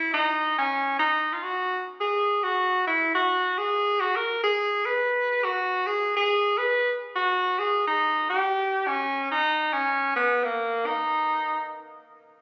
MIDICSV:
0, 0, Header, 1, 2, 480
1, 0, Start_track
1, 0, Key_signature, 5, "minor"
1, 0, Tempo, 427960
1, 1758, Time_signature, 4, 2, 24, 8
1, 13927, End_track
2, 0, Start_track
2, 0, Title_t, "Tenor saxophone"
2, 0, Program_c, 0, 66
2, 0, Note_on_c, 0, 64, 93
2, 145, Note_off_c, 0, 64, 0
2, 152, Note_on_c, 0, 63, 90
2, 599, Note_off_c, 0, 63, 0
2, 652, Note_on_c, 0, 61, 92
2, 1090, Note_off_c, 0, 61, 0
2, 1113, Note_on_c, 0, 63, 96
2, 1492, Note_on_c, 0, 65, 68
2, 1509, Note_off_c, 0, 63, 0
2, 1604, Note_on_c, 0, 66, 94
2, 1621, Note_off_c, 0, 65, 0
2, 2078, Note_off_c, 0, 66, 0
2, 2246, Note_on_c, 0, 68, 91
2, 2731, Note_on_c, 0, 66, 92
2, 2747, Note_off_c, 0, 68, 0
2, 3203, Note_off_c, 0, 66, 0
2, 3219, Note_on_c, 0, 64, 90
2, 3501, Note_off_c, 0, 64, 0
2, 3531, Note_on_c, 0, 66, 99
2, 4014, Note_on_c, 0, 68, 100
2, 4031, Note_off_c, 0, 66, 0
2, 4492, Note_on_c, 0, 66, 93
2, 4508, Note_off_c, 0, 68, 0
2, 4661, Note_on_c, 0, 70, 94
2, 4678, Note_off_c, 0, 66, 0
2, 4964, Note_off_c, 0, 70, 0
2, 4974, Note_on_c, 0, 68, 96
2, 5446, Note_on_c, 0, 71, 100
2, 5463, Note_off_c, 0, 68, 0
2, 6103, Note_on_c, 0, 66, 96
2, 6119, Note_off_c, 0, 71, 0
2, 6578, Note_on_c, 0, 68, 102
2, 6595, Note_off_c, 0, 66, 0
2, 6883, Note_off_c, 0, 68, 0
2, 6914, Note_on_c, 0, 68, 104
2, 7377, Note_on_c, 0, 71, 103
2, 7394, Note_off_c, 0, 68, 0
2, 7760, Note_off_c, 0, 71, 0
2, 8024, Note_on_c, 0, 66, 95
2, 8511, Note_on_c, 0, 68, 92
2, 8528, Note_off_c, 0, 66, 0
2, 8810, Note_off_c, 0, 68, 0
2, 8829, Note_on_c, 0, 63, 96
2, 9259, Note_off_c, 0, 63, 0
2, 9307, Note_on_c, 0, 67, 104
2, 9953, Note_on_c, 0, 61, 89
2, 9970, Note_off_c, 0, 67, 0
2, 10417, Note_off_c, 0, 61, 0
2, 10443, Note_on_c, 0, 63, 96
2, 10911, Note_on_c, 0, 61, 92
2, 10928, Note_off_c, 0, 63, 0
2, 11376, Note_off_c, 0, 61, 0
2, 11396, Note_on_c, 0, 59, 94
2, 11708, Note_on_c, 0, 58, 87
2, 11725, Note_off_c, 0, 59, 0
2, 12184, Note_on_c, 0, 63, 95
2, 12200, Note_off_c, 0, 58, 0
2, 13131, Note_off_c, 0, 63, 0
2, 13927, End_track
0, 0, End_of_file